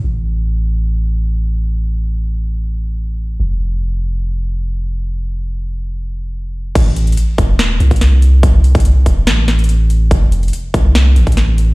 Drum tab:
CC |--------------------------------|--------------------------------|--------------------------------|--------------------------------|
HH |--------------------------------|--------------------------------|--------------------------------|--------------------------------|
SD |--------------------------------|--------------------------------|--------------------------------|--------------------------------|
BD |--------------------------------|--------------------------------|--------------------------------|--------------------------------|

CC |x-------------------------------|--------------------------------|--------------------------------|
HH |x---x-xxx---x---x---x-xxx---x---|x---x-xxx---x---x---x-xxx---x---|x---x-xxx---x---x---x-xxx---x---|
SD |----------------o-------o-------|----------------o---o-----------|----------------o-------o-------|
BD |o-----------o---------o---------|o-----o-----o-------------------|o-----------o---------o---------|